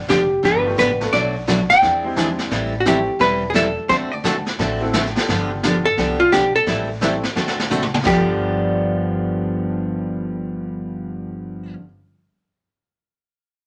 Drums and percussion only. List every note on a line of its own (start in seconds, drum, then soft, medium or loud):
0.09 kick soft
0.09 snare medium
0.09 hi-hat pedal medium
0.44 brush sweep soft
0.44 kick soft
0.44 snare soft
0.79 kick soft
0.79 snare medium
0.79 hi-hat pedal medium
1.01 snare soft
1.13 brush sweep medium
1.13 kick soft
1.13 snare soft
1.48 kick soft
1.48 snare medium
1.48 hi-hat pedal medium
1.70 snare soft
1.82 brush sweep soft
1.82 kick soft
1.82 snare soft
2.17 kick soft
2.17 snare medium
2.17 hi-hat pedal medium
2.39 snare soft
2.51 brush sweep soft
2.51 kick soft
2.51 snare soft
2.86 kick soft
2.86 snare medium
2.86 hi-hat pedal medium
3.20 brush sweep soft
3.20 kick soft
3.20 snare soft
3.55 kick soft
3.55 snare medium
3.55 hi-hat pedal medium
3.89 brush sweep soft
3.89 kick soft
3.89 snare soft
4.24 kick soft
4.24 snare medium
4.24 hi-hat pedal medium
4.46 snare soft
4.59 brush sweep soft
4.59 kick soft
4.59 snare soft
4.94 kick soft
4.94 snare medium
4.94 hi-hat pedal medium
5.05 snare soft
5.16 snare soft
5.16 snare medium
5.28 brush sweep soft
5.28 kick soft
5.28 snare soft
5.63 kick soft
5.63 snare medium
5.63 hi-hat pedal medium
5.98 brush sweep soft
5.98 kick soft
5.98 snare soft
6.32 kick soft
6.32 snare medium
6.32 hi-hat pedal medium
6.67 brush sweep medium
6.67 kick soft
6.67 snare soft
7.02 kick soft
7.02 snare medium
7.02 hi-hat pedal medium
7.23 snare soft
7.36 snare medium
7.48 snare medium
7.59 snare medium
7.71 hi-hat pedal medium
7.71 high tom medium
7.82 high tom medium
7.94 high tom loud
8.06 kick loud
8.06 snare medium
8.06 splash medium